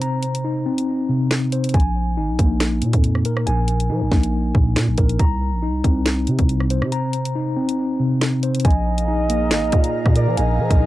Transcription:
Already playing: C3 C4 C5
0.01 A#5, closed hi-hat
0.23 closed hi-hat
0.35 closed hi-hat
0.45 D#4
0.66 C4
0.78 closed hi-hat
1.09 C3
1.31 finger snap, snare
1.52 C5, closed hi-hat
1.64 closed hi-hat
1.69 closed hi-hat
1.74 A#1 G#5, kick, closed hi-hat
1.80 closed hi-hat
2.17 G#1 D#4
2.29 A#1
2.39 A#1 A#3, kick, closed hi-hat
2.60 finger snap, snare, closed hi-hat
2.82 A#2, closed hi-hat
2.93 F2, kick, closed hi-hat
3.04 closed hi-hat
3.15 cross-stick
3.25 A#4, closed hi-hat
3.37 cross-stick
3.47 A#1 G#5, closed hi-hat
3.68 closed hi-hat
3.80 closed hi-hat
3.90 F3 D#4
4.01 A#1
4.12 A#1 A#3, kick, snare
4.23 closed hi-hat
4.55 A#1 A#2, kick
4.76 A#2, finger snap, snare
4.88 A#1
4.98 A#1 A#4, kick, closed hi-hat
5.09 closed hi-hat
5.19 C2 A#5, kick, closed hi-hat
5.52 A#1
5.63 D#4
5.68 C2
5.84 C2 C4, kick, closed hi-hat
6.06 finger snap, snare, closed hi-hat
6.27 C3, closed hi-hat
6.39 C2, kick, closed hi-hat
6.49 closed hi-hat
6.60 cross-stick
6.70 C5, closed hi-hat
6.82 C3, cross-stick
6.92 A#5, closed hi-hat
7.13 closed hi-hat
7.25 closed hi-hat
7.35 D#4
7.57 C4
7.69 closed hi-hat
8.00 C3
8.21 finger snap, snare
8.43 C5, closed hi-hat
8.55 closed hi-hat
8.60 closed hi-hat
8.65 A#1 D#4 G#4 D#5 F5 G#5 A#5, kick, closed hi-hat
8.71 closed hi-hat
8.98 closed hi-hat
9.08 D#4
9.30 A#3, closed hi-hat
9.51 G#1, finger snap, snare, closed hi-hat
9.63 A#1
9.72 A#2, kick, closed hi-hat
9.84 closed hi-hat
10.06 A#2, kick, cross-stick
10.16 A#4 D5, closed hi-hat
10.27 F3
10.37 A#1 D#5 G#5, closed hi-hat
10.59 F3
10.71 A#1, kick, closed hi-hat
10.80 D#4

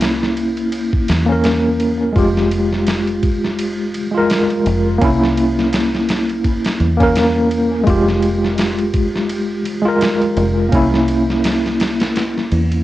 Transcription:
Already playing: C2 A#3 C#4 E4
0.01 snare, ride
0.23 snare
0.37 ride
0.57 ride
0.72 ride
0.93 kick
1.08 E2, snare, ride
1.26 A#3 C#4
1.32 A#4
1.44 snare, ride
1.80 ride
2.13 F1 G#3 F4, kick, ride
2.19 G4
2.37 snare
2.51 ride
2.73 snare
2.87 snare, ride
3.07 ride
3.23 kick, ride
3.44 snare
3.59 ride
3.94 ride
4.11 G#3 F4
4.17 A#4
4.30 snare, ride
4.50 ride
4.66 F1, ride
4.98 C2 A#3 C#4, kick, ride
5.04 E4
5.23 snare
5.37 ride
5.59 snare
5.73 snare, ride
5.95 snare
6.09 snare, ride
6.29 ride
6.44 kick, ride
6.64 snare, ride
6.80 E2, ride
6.97 A#3 C#4, kick, ride
7.03 A#4
7.15 snare, ride
7.51 ride
7.84 F1 G#3 F4, kick, ride
7.90 G4
8.08 snare
8.22 ride
8.44 snare
8.58 snare, ride
8.79 ride
8.94 kick, ride
9.16 snare
9.29 ride
9.65 ride
9.82 G#3 F4
9.88 A#4
10.01 snare, ride
10.22 ride
10.37 F1, ride
10.69 C2 A#3 C#4, kick, ride
10.75 E4
10.94 snare
11.08 ride
11.30 snare
11.44 snare, ride
11.66 snare
11.80 snare, ride
12.00 snare, ride
12.16 snare, ride
12.38 snare
12.52 E2, ride
12.72 ride

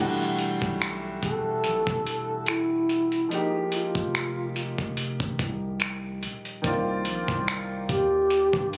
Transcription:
Already playing: E1 E3 G3
0.00 A3 D4 F#4
0.38 closed hi-hat
0.62 B1, kick
0.82 finger snap, closed hi-hat
1.23 E1 A4, kick, closed hi-hat
1.64 B1, closed hi-hat
1.87 E1, kick
2.06 closed hi-hat
2.46 E4, finger snap, closed hi-hat
2.89 closed hi-hat
3.12 closed hi-hat
3.29 F3 G#3 A#3 D#4, closed hi-hat
3.33 D#4 G4
3.72 F4, closed hi-hat
3.95 F1, kick
4.15 finger snap, closed hi-hat
4.56 closed hi-hat
4.78 F1, kick
4.97 closed hi-hat
5.20 F1, kick
5.39 C2, kick, closed hi-hat
5.80 finger snap, closed hi-hat
6.23 D#1, closed hi-hat
6.45 closed hi-hat
6.62 C2 D#3 A#3 C4, kick, closed hi-hat
6.66 F4 D5
7.05 A#1, closed hi-hat
7.28 C2, kick
7.48 finger snap, closed hi-hat
7.89 D#2 G4, kick, closed hi-hat
8.30 closed hi-hat
8.53 G2, kick
8.73 closed hi-hat

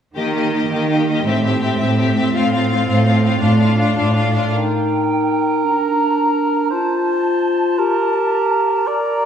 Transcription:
0.15 D#3 A#3 G4 D#5
0.34 A#3 G4 D#5
0.52 A#3 G4 D#5
0.70 D#3 A#3 G4 D#5
0.89 A#3 G4 D#5
1.08 A#3 G4 D#5
1.25 A2 C4 G4 E5
1.43 C4 G4 E5
1.62 C4 G4 E5
1.78 A2 C4 G4 E5
1.98 C4 G4 E5
2.15 C4 G4 E5
2.34 A2 C4 F4 F5
2.53 C4 F4 F5
2.70 C4 F4 F5
2.87 A2 C4 F4 F5
3.05 C4 F4 F5
3.24 C4 F4 F5
3.40 A2 D4 F4 F5
3.59 D4 F4 F5
3.77 D4 F4 F5
3.96 A2 D4 F4 F5
4.15 D4 F4 F5
4.33 D4 F4 F5
4.53 D#4 A#4 G5
5.63 D4 A#5
6.70 F4 C5 A5
7.78 G4 A#4
8.87 A#4 D5 A#5

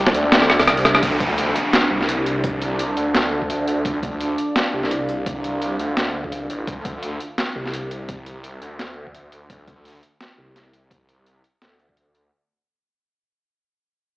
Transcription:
Already playing: C2 D4 D5 E5 G5
0.07 snare
0.14 D2, closed hi-hat
0.32 cross-stick, snare, closed hi-hat
0.42 cross-stick
0.50 cross-stick, open hi-hat
0.59 kick, cross-stick, open hi-hat
0.67 C2, cross-stick, closed hi-hat
0.77 open hi-hat
0.85 cross-stick, closed hi-hat
0.95 cross-stick
1.03 D2 D4, kick, closed hi-hat, downlifter
1.20 kick, closed hi-hat
1.34 D5, closed hi-hat
1.56 closed hi-hat
1.63 A5
1.73 snare, closed hi-hat
1.82 F5
1.91 C2
2.01 snare
2.09 closed hi-hat
2.26 closed hi-hat
2.44 kick, closed hi-hat
2.62 closed hi-hat
2.79 closed hi-hat
2.97 D2, closed hi-hat
3.15 snare, closed hi-hat
3.32 D2
3.42 kick
3.50 closed hi-hat
3.68 closed hi-hat
3.85 D2, kick, closed hi-hat
4.03 kick, closed hi-hat
4.21 closed hi-hat
4.38 closed hi-hat
4.56 snare, closed hi-hat
4.73 C2
4.83 snare
4.91 closed hi-hat
5.09 closed hi-hat
5.26 kick, closed hi-hat
5.44 closed hi-hat
5.62 closed hi-hat
5.79 D2, closed hi-hat
5.97 snare, closed hi-hat
6.24 kick
6.28 C#2, closed hi-hat
6.50 A1, closed hi-hat
6.67 D2, kick, closed hi-hat
6.85 kick, closed hi-hat
7.03 closed hi-hat
7.07 G5
7.20 closed hi-hat
7.38 snare, closed hi-hat
7.56 C2
7.66 snare
7.74 closed hi-hat
7.91 closed hi-hat
8.09 kick, closed hi-hat
8.26 closed hi-hat
8.44 closed hi-hat
8.62 D2, closed hi-hat
8.79 snare, closed hi-hat
8.97 D2
9.07 kick
9.14 closed hi-hat
9.32 closed hi-hat
9.50 D2, kick, closed hi-hat
9.67 kick, closed hi-hat
9.85 closed hi-hat
9.88 closed hi-hat
9.90 closed hi-hat
9.93 closed hi-hat
9.95 closed hi-hat
9.97 closed hi-hat
9.99 closed hi-hat
10.01 closed hi-hat
10.03 closed hi-hat
10.21 snare, closed hi-hat
10.38 C2
10.56 snare, closed hi-hat
10.73 closed hi-hat
10.91 kick, closed hi-hat
11.09 closed hi-hat
11.26 closed hi-hat
11.44 closed hi-hat
11.62 D2, snare, closed hi-hat
11.79 closed hi-hat
11.89 kick
11.97 closed hi-hat
12.15 closed hi-hat

